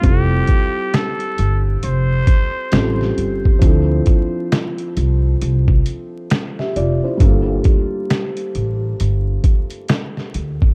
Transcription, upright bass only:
X:1
M:4/4
L:1/16
Q:"Swing 16ths" 1/4=67
K:Gdor
V:1 name="Upright bass" clef=bass
F,,,2 z4 G,,,2 F,,,2 z2 A,,,2 G,,, z | D,,2 z4 C,,2 C,,2 z4 F,,, z | G,,,2 z4 A,,,2 G,,,2 z4 D,, z |]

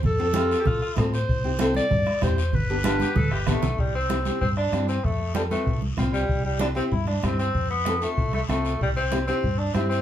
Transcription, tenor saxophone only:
X:1
M:4/4
L:1/16
Q:1/4=191
K:C
V:1 name="Tenor saxophone"
z4 F3 G F2 F3 z3 | z16 | z4 F2 G2 A2 G2 A,4 | G,2 C6 C2 D4 C2 |
A,4 G,2 A,4 z4 G,2- | G,2 G,2 D2 C2 E2 D2 C2 C2- | C2 B,4 A,4 A,2 A,4 | G,2 C4 C4 D2 C2 C2 |]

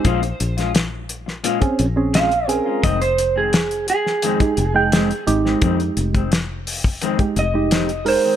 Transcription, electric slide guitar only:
X:1
M:4/4
L:1/16
Q:1/4=86
K:Fm
V:1 name="Electric slide guitar"
c4 z8 f2 B2 | e c2 A3 A8 z2 | z8 z2 e4 c2 |]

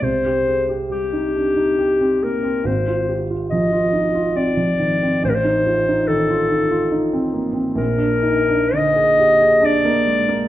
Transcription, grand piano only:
X:1
M:3/4
L:1/16
Q:1/4=69
K:Fdor
V:1 name="Grand piano"
C,, G A G G, E D E G C B, C | A,,, F G F F, F E F C F, E, C | =A,,, E F E E, F E F E C B, C | B,,, D E D D, A G A D B, A, B, |]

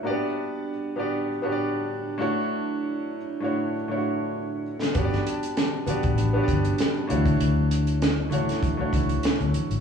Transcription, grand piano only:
X:1
M:4/4
L:1/16
Q:"Swing 16ths" 1/4=98
K:D
V:1 name="Grand piano"
[^A,B,DFGd]4 z2 [B,DFGd]2 z [B,DFGcd]4- [B,DFGcd] [=A,DEFc]2- | [A,DEFc]4 z2 [A,DEFc]2 z [A,DE=F^Fc]4- [A,DE=F^Fc] z2 | [B,DFGcd]4 z2 [B,DFGd]2 z [B,DFGcd]4- [B,DFGcd] [A,DEFc]2- | [A,DEFc]4 z2 [A,DEFc]2 z [A,DEFc]4- [A,DEFc] z2 |]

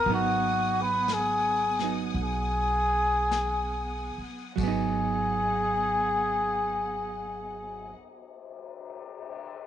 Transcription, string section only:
X:1
M:4/4
L:1/8
Q:"Swing" 1/4=47
K:G#m
V:1 name="String section"
[B,fgd']8 | [B,Gdf]8 |]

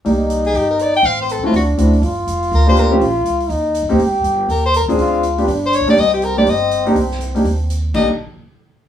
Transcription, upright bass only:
X:1
M:4/4
L:1/8
Q:"Swing" 1/4=243
K:Cm
V:1 name="Upright bass" clef=bass
C,,4 G,,,4 | =A,,,3 z D,,2 D,,2 | G,,,2 F,,,2 D,,4 | B,,,2 _D,,2 E,,2- (3E,, G,, E,, |
A,,,2 G,,,2 E,,2- (3E,, G,, _D,, | D,,4 G,,,2- (3G,,, =B,,, _D,, | C,,4 G,,,4 | C,,4 E,,4 |
C,, z6 z |]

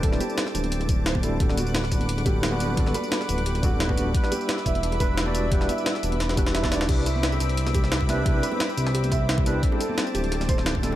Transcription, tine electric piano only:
X:1
M:4/4
L:1/16
Q:1/4=175
K:Clyd
V:1 name="Tine electric piano"
[CDEA]8- [CDEA]2 z4 [G,CDEA]2 | [G,B,DAf]8- [G,B,DAf]2 [G,B,DFA]3 [G,B,DFB]3 | [G,B,DFA]8- [G,B,DFA]2 [G,B,DFA]3 [G,B,DFB]3 | [G,DEBf]8- [G,DEBf]2 [G,DEFB]3 [G,DEFd]3 |
[G,DEBf]8- [G,DEBf]2 [G,DEFB]3 [G,DEFd]3 | [G,CDEB]8- [G,CDEB]2 z4 [G,CDEB]2 | [G,CDEB]8- [G,CDEB]2 z4 [G,CDEB]2 | [G,CDEA]8- [G,CDEA]2 z4 [G,CDEA]2 |]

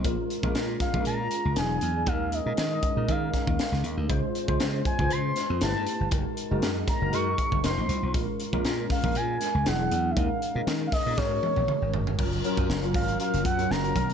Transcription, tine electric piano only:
X:1
M:4/4
L:1/16
Q:"Swing 16ths" 1/4=119
K:Gblyd
V:1 name="Tine electric piano"
[A,DFB]2 z [A,DFB]3 z [A,DFAB]4- [A,DFAB] [^F,=D=E^G]3 z | [A,DEB]2 z [A,DEB]3 z [A,DEB] [A,DEB]4- [A,DEB] z3 | [A,DFc]2 z [A,DFc]3 z [A,DF_c=c]4- [A,DF_c=c] [=A,=E=GB=B]3 z | [A,EGB]2 z [A,EGB]3 z [A,EGB] [A,EGB]4 [=A,EFBc]3 z |
[A,DFB]2 z [A,DFB]3 z [A,DFB]4- [A,DFB] [^F,=D=E^G]3 z | [A,DEB]2 z [A,DEB]3 z [A,DEB] [A,DGB]4- [A,DGB] z3 | [G,DFB] z [G,DFB]2 z [G,DFB]2 z [G,DFB]2 z [G,DFB] z [G,DFB] [E,_CDB]2 |]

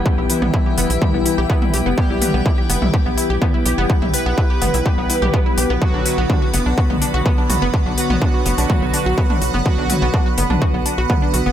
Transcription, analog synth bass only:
X:1
M:4/4
L:1/16
Q:1/4=125
K:Bm
V:1 name="Analog synth bass" clef=bass
z B,,, z B,,, z2 F,,, B,,, z B,,, z B,,, z2 B,,, F,,, | z B,,, z B,,, z2 F,,, B,,, z B,,, z B,,, z2 B,,, F,,, | z B,,, z B,,, z2 F,,, B,,, z B,,, z B,,, z2 B,,, B,,, | z B,,, z B,,, z2 F,,, B,,, z B,,, z B,,, z2 B,,, F,,, |
z B,,, z B,,, z2 F,,, B,,, z B,,, z B,,, z2 B,,, F,,, | z B,,, z B,,, z2 F,,, B,,, z B,,, z B,,, z2 B,,, F,,, |]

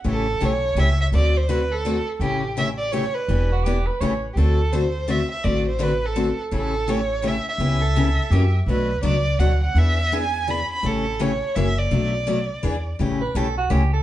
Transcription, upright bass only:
X:1
M:3/4
L:1/8
Q:"Swing" 1/4=167
K:Amix
V:1 name="Upright bass" clef=bass
A,,,2 B,,,2 C,,2 | D,,6 | A,,,6 | E,,,4 A,,,2 |
D,,6 | A,,,6 | A,,,6 | C,,4 F,,2 |
B,,,2 C,,2 D,,2 | E,,6 | A,,,4 F,,,2 | B,,,4 E,,2 |
A,,,2 B,,,2 C,,2 |]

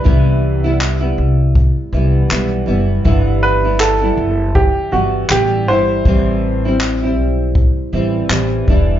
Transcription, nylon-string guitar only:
X:1
M:4/4
L:1/16
Q:"Swing 16ths" 1/4=80
K:Ador
V:1 name="Nylon-string guitar" clef=bass
[C,E,G,B,E]3 [G,B,E]2 [G,B,E]4- [G,B,E] [E,G,B,E]2 [E,G,B,E]2 [E,G,B,E]2 | [G,,D,E,G,B,E]3 [E,G,B,E]2 [E,G,B,E]4- [E,G,B,E] [E,G,B,E]2 [E,G,B,E]2 [E,G,E]2 | [A,,E,G,CE]3 [G,CE]2 [G,CE]4- [G,CE] [E,G,CE]2 [E,G,CE]2 [E,G,DE]2 |]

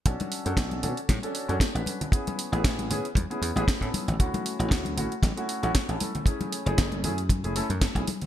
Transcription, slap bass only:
X:1
M:4/4
L:1/16
Q:"Swing 16ths" 1/4=116
K:Bdor
V:1 name="Slap bass" clef=bass
B,,, z2 F,, B,,,2 B,, z A,, z2 F,, z A,,, z2 | z3 A,,, A,,,2 A,, z E,, z E,, A,,, z A,, z A,,, | D,, z2 A,,, D,,2 A,,, z A,,, z2 A,,, z A,,, z2 | z3 F,,, F,,,2 F,,3 F,,, z F,, z B,,, z2 |]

